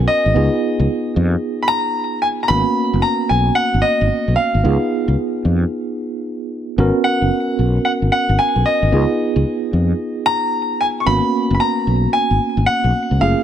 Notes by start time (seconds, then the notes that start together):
Already playing: B3 C#4 F#4 A#4
0.08 D#5
0.26 G#1
0.34 C#2 B3 D#4 F4 G#4
0.80 C#2
1.16 F2
1.63 B5
1.68 A#5
2.22 G#5
2.43 A#5
2.48 G#1 A#3 B3 C#4 F#4 B5
2.94 F#1
3.02 A#5
3.29 B1 G#5
3.55 F#5
3.74 G#1
3.82 D#5
4.01 G#1
4.28 B1
4.36 F5
4.54 G#1
4.63 C#2 B3 D#4 F4 G#4
5.08 C#2
5.45 F2
6.78 G#1 B3 C#4 F#4 A#4
7.04 F#5
7.22 F#1
7.59 B1
7.85 F#5
8.02 G#1
8.12 F#5
8.29 G#1
8.39 G#5
8.56 B1
8.66 D#5
8.82 G#1
8.92 C#2 B3 D#4 F4 G#4
9.36 C#2
9.73 F2
10.26 A#5
10.81 G#5
11.00 C#6
11.06 G#1 A#3 B3 C#4 F#4 B5
11.50 F#1
11.55 B5
11.60 A#5
11.87 B1
12.13 G#5
12.31 G#1
12.57 G#1
12.66 F#5
12.84 B1
13.11 C#2
13.20 F#1 A3 C#4 F4 G#4 F5
13.27 A#3